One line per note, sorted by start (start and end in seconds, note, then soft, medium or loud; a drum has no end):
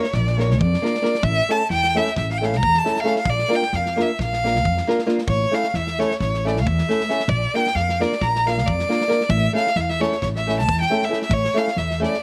0.00 0.16 C#5 medium
0.00 snare soft
0.13 0.60 A#1 medium
0.13 0.43 D5 medium
0.13 kick medium
0.13 snare soft
0.27 snare soft
0.37 0.51 A#3 medium
0.37 0.51 D4 medium
0.37 0.52 F4 soft
0.37 0.52 A#4 medium
0.37 0.60 C#5 medium
0.37 snare soft
0.51 snare soft
0.60 0.74 F2 medium
0.60 1.25 D5 medium
0.60 kick medium
0.74 snare soft
0.82 0.94 A#3 medium
0.82 0.95 D4 medium
0.82 0.95 F4 medium
0.82 0.95 A#4 medium
0.82 snare soft
0.95 snare soft
1.02 1.14 A#3 medium
1.02 1.14 D4 medium
1.02 1.15 F4 medium
1.02 1.15 A#4 medium
1.02 snare soft
1.15 snare soft
1.23 1.39 A1 loud
1.23 1.52 E5 loud
1.23 kick medium
1.49 1.61 A3 medium
1.49 1.61 C#4 medium
1.49 1.62 E4 medium
1.49 1.62 A4 medium
1.49 1.70 A5 medium
1.49 snare soft
1.70 1.98 E2 medium
1.70 1.99 G5 loud
1.70 snare soft
1.84 snare soft
1.94 2.07 A3 medium
1.94 2.08 C#4 medium
1.94 2.08 E4 medium
1.94 2.08 A4 medium
1.94 2.17 E5 medium
1.94 snare soft
2.07 snare soft
2.16 2.63 A1 medium
2.16 2.30 E5 medium
2.16 kick medium
2.16 snare soft
2.30 2.39 F5 medium
2.30 snare soft
2.38 2.54 A3 medium
2.38 2.54 C#4 medium
2.38 2.46 G5 medium
2.42 2.55 E4 medium
2.42 2.55 A4 medium
2.42 2.58 F5 medium
2.42 snare soft
2.53 2.80 A#5 loud
2.53 snare soft
2.63 2.77 E2 medium
2.63 kick medium
2.74 snare soft
2.78 3.02 A5 medium
2.84 2.97 A3 medium
2.84 2.97 C#4 medium
2.84 2.98 E4 medium
2.84 2.98 A4 medium
2.84 snare soft
2.96 3.18 F5 loud
2.96 snare soft
3.03 3.17 A3 medium
3.03 3.17 C#4 medium
3.03 3.17 E4 medium
3.03 3.17 A4 medium
3.03 snare soft
3.16 3.31 F5 medium
3.16 snare soft
3.25 3.41 A#1 medium
3.25 kick medium
3.30 3.57 D5 loud
3.39 snare soft
3.48 3.62 A#3 medium
3.48 3.63 D4 medium
3.48 3.63 F4 medium
3.48 3.63 A#4 medium
3.52 3.77 G5 medium
3.52 snare soft
3.62 snare soft
3.73 4.01 F2 medium
3.73 4.03 F5 medium
3.73 snare soft
3.86 snare soft
3.96 4.09 A#3 medium
3.96 4.10 D4 medium
3.96 4.10 F4 medium
3.96 4.10 A#4 medium
3.96 snare soft
4.02 4.21 E5 medium
4.19 4.65 A#1 medium
4.19 5.06 F5 medium
4.19 kick medium
4.19 snare soft
4.33 snare soft
4.44 4.57 A#3 medium
4.44 4.57 D4 medium
4.44 4.57 F4 medium
4.44 4.57 A#4 medium
4.44 snare soft
4.55 snare soft
4.65 4.79 F2 medium
4.65 kick medium
4.77 snare soft
4.87 5.00 A#3 medium
4.87 5.00 D4 medium
4.87 5.00 F4 medium
4.87 5.00 A#4 medium
4.87 snare soft
4.99 snare soft
5.06 5.19 A#3 medium
5.06 5.19 D4 medium
5.06 5.19 F4 medium
5.06 5.20 A#4 medium
5.06 snare soft
5.18 snare soft
5.27 5.43 A1 medium
5.27 5.56 C#5 medium
5.27 kick medium
5.51 5.65 A3 medium
5.51 5.65 C#4 soft
5.51 5.65 E4 medium
5.51 5.66 A4 medium
5.51 5.70 F5 medium
5.51 snare soft
5.64 snare soft
5.70 6.02 E2 medium
5.70 5.77 F5 medium
5.74 6.01 E5 medium
5.74 snare soft
5.87 snare soft
5.99 6.11 A3 medium
5.99 6.12 C#4 medium
5.99 6.12 E4 medium
5.99 6.12 A4 medium
5.99 6.20 C#5 medium
5.99 snare soft
6.11 snare soft
6.20 6.66 A1 medium
6.20 6.48 C#5 medium
6.20 kick medium
6.20 snare soft
6.34 snare soft
6.45 6.58 A3 medium
6.45 6.58 C#4 medium
6.45 6.58 E4 medium
6.45 6.59 A4 medium
6.45 6.60 D5 medium
6.45 snare soft
6.57 6.67 F5 medium
6.57 snare soft
6.66 6.80 E2 medium
6.66 7.31 E5 medium
6.66 kick medium
6.78 snare soft
6.88 7.01 A3 medium
6.88 7.01 C#4 medium
6.88 7.02 E4 medium
6.88 7.02 A4 medium
6.88 snare soft
7.01 snare soft
7.09 7.21 A3 medium
7.09 7.21 C#4 medium
7.09 7.21 E4 medium
7.09 7.22 A4 medium
7.09 snare soft
7.20 snare soft
7.28 7.44 A#1 loud
7.28 7.57 D5 medium
7.28 kick medium
7.54 7.67 A#3 medium
7.54 7.67 D4 medium
7.54 7.67 F4 medium
7.54 7.68 A#4 medium
7.54 7.77 G5 medium
7.54 snare soft
7.66 snare soft
7.75 8.03 F2 medium
7.75 8.03 F5 medium
7.75 snare soft
7.89 snare soft
8.00 8.13 A#3 medium
8.00 8.13 D4 medium
8.00 8.13 F4 medium
8.00 8.14 A#4 medium
8.00 8.23 D5 medium
8.00 snare soft
8.12 snare soft
8.21 8.68 A#1 medium
8.21 8.48 A#5 medium
8.21 kick medium
8.21 snare soft
8.35 snare soft
8.46 8.59 A#3 medium
8.46 8.59 D4 soft
8.46 8.60 F4 medium
8.46 8.60 A#4 medium
8.46 8.68 F5 medium
8.46 snare soft
8.58 snare soft
8.66 8.82 F2 medium
8.66 9.31 D5 medium
8.66 kick medium
8.79 snare soft
8.89 9.02 A#3 medium
8.89 9.02 D4 medium
8.89 9.02 F4 medium
8.89 9.02 A#4 medium
8.89 snare soft
9.01 snare soft
9.07 9.21 A#3 medium
9.07 9.21 D4 medium
9.07 9.21 F4 medium
9.07 9.21 A#4 medium
9.07 snare soft
9.21 snare soft
9.29 9.45 A1 loud
9.29 9.55 E5 medium
9.29 kick loud
9.53 9.67 A3 medium
9.53 9.67 C#4 medium
9.53 9.67 E4 medium
9.53 9.68 A4 medium
9.53 9.78 F5 medium
9.53 snare soft
9.67 snare soft
9.76 10.04 E2 medium
9.76 9.82 E5 medium
9.76 snare soft
9.81 9.91 F5 medium
9.89 10.03 E5 loud
9.89 snare soft
10.00 10.13 A3 medium
10.00 10.13 C#4 medium
10.00 10.14 E4 medium
10.00 10.14 A4 medium
10.00 10.22 C#5 medium
10.00 snare soft
10.12 snare soft
10.22 10.68 A1 medium
10.22 10.28 C#5 medium
10.22 kick medium
10.22 snare soft
10.36 10.58 E5 medium
10.36 snare soft
10.47 10.60 A3 medium
10.47 10.60 C#4 medium
10.47 10.60 E4 medium
10.47 10.61 A4 medium
10.47 snare soft
10.59 10.80 A5 medium
10.59 snare soft
10.68 10.82 E2 medium
10.68 kick medium
10.81 11.06 G5 medium
10.81 snare soft
10.90 11.03 A3 medium
10.90 11.03 C#4 medium
10.90 11.03 E4 medium
10.90 11.03 A4 medium
11.03 11.23 E5 medium
11.03 snare soft
11.09 11.22 A3 medium
11.09 11.22 C#4 medium
11.09 11.22 E4 medium
11.09 11.23 A4 medium
11.13 snare soft
11.22 11.34 E5 medium
11.22 snare soft
11.29 11.46 A1 medium
11.29 11.59 C#5 loud
11.29 kick loud
11.45 snare soft
11.54 11.68 A3 medium
11.54 11.68 C#4 medium
11.54 11.68 E4 medium
11.54 11.69 A4 medium
11.54 11.80 F5 medium
11.54 snare soft
11.67 snare soft
11.76 12.04 E2 medium
11.76 12.04 E5 medium
11.76 snare soft
11.91 snare soft
12.00 12.13 A3 medium
12.00 12.14 C#4 medium
12.00 12.14 E4 medium
12.00 12.15 A4 medium
12.00 snare soft
12.05 12.23 D5 medium
12.14 snare soft